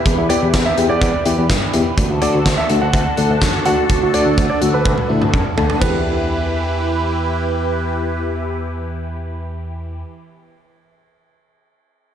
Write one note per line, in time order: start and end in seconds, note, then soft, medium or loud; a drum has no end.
0.00 1.94 E3 medium
0.00 1.94 E4 medium
0.00 1.94 G4 medium
0.00 1.94 B4 medium
0.06 0.15 E2 medium
0.06 kick loud
0.06 closed hi-hat medium
0.18 0.27 E2 medium
0.29 0.48 B3 medium
0.29 0.48 E4 medium
0.29 0.48 G4 loud
0.29 0.37 D5 medium
0.29 closed hi-hat medium
0.42 0.51 E2 medium
0.54 0.63 E2 medium
0.54 kick loud
0.54 snare loud
0.54 closed hi-hat medium
0.66 0.73 E5 medium
0.77 0.87 E2 loud
0.77 0.96 B3 medium
0.77 0.96 E4 medium
0.77 0.96 G4 medium
0.77 closed hi-hat medium
0.89 0.99 E2 medium
0.89 1.23 D5 medium
1.01 1.11 E2 loud
1.01 kick loud
1.01 closed hi-hat medium
1.26 1.35 E2 medium
1.26 1.44 B3 medium
1.26 1.44 E4 medium
1.26 1.44 G4 medium
1.26 closed hi-hat medium
1.38 1.47 E2 medium
1.50 1.59 G2 medium
1.50 kick loud
1.50 snare medium
1.50 closed hi-hat medium
1.73 1.83 E2 medium
1.73 1.92 B3 medium
1.73 1.92 E4 medium
1.73 1.92 G4 medium
1.73 closed hi-hat medium
1.98 2.07 D2 medium
1.98 5.78 D3 medium
1.98 5.78 D4 medium
1.98 5.78 F#4 medium
1.98 5.78 A4 medium
1.98 kick loud
1.98 closed hi-hat medium
2.10 2.19 D2 medium
2.22 2.40 A3 medium
2.22 2.40 D4 medium
2.22 2.40 F#4 loud
2.22 2.29 D5 medium
2.22 closed hi-hat medium
2.34 2.43 D2 medium
2.46 2.55 D2 medium
2.46 kick loud
2.46 snare loud
2.46 closed hi-hat medium
2.58 2.65 E5 medium
2.69 2.79 D2 loud
2.69 2.88 A3 medium
2.69 2.88 D4 medium
2.69 2.88 F#4 medium
2.69 closed hi-hat medium
2.82 2.91 D2 medium
2.82 3.15 F#5 medium
2.93 3.03 D2 loud
2.93 kick loud
2.93 closed hi-hat medium
3.17 3.27 D2 medium
3.17 3.36 A3 medium
3.17 3.36 D4 medium
3.17 3.36 A4 medium
3.17 closed hi-hat medium
3.30 3.39 D2 medium
3.41 3.51 F#2 medium
3.41 kick loud
3.41 snare medium
3.41 closed hi-hat medium
3.65 3.75 D2 medium
3.65 3.84 A3 medium
3.65 3.84 D4 medium
3.65 3.84 F#4 medium
3.65 3.73 F#5 medium
3.65 closed hi-hat medium
3.90 3.99 D2 medium
3.90 kick loud
3.90 closed hi-hat medium
4.02 4.11 D2 medium
4.14 4.32 A3 medium
4.14 4.32 D4 medium
4.14 4.32 F#4 medium
4.14 4.22 D5 medium
4.14 closed hi-hat medium
4.26 4.35 D2 medium
4.38 4.47 D2 medium
4.38 kick loud
4.38 closed hi-hat medium
4.50 4.57 D5 medium
4.61 4.71 D2 medium
4.61 4.80 A3 medium
4.61 4.80 D4 medium
4.61 4.80 F#4 medium
4.61 closed hi-hat medium
4.74 4.83 D2 medium
4.74 5.08 B4 medium
4.85 4.95 D2 medium
4.85 kick loud
4.85 high tom medium
4.98 high tom soft
5.09 5.19 D2 medium
5.09 5.28 A3 medium
5.09 5.28 D4 medium
5.09 5.28 E4 medium
5.22 5.31 D2 medium
5.22 mid tom medium
5.34 5.43 F#2 medium
5.34 kick loud
5.34 mid tom medium
5.57 5.67 D2 medium
5.57 5.76 A3 medium
5.57 5.76 D4 medium
5.57 5.76 A4 medium
5.57 floor tom medium
5.70 floor tom medium
5.79 10.01 E2 medium
5.79 10.01 E3 medium
5.79 9.99 B3 medium
5.79 10.01 E4 medium
5.79 10.01 G4 medium
5.79 7.21 B4 medium
5.79 10.01 B4 medium
5.79 kick loud
5.79 ride medium
5.83 10.03 G4 medium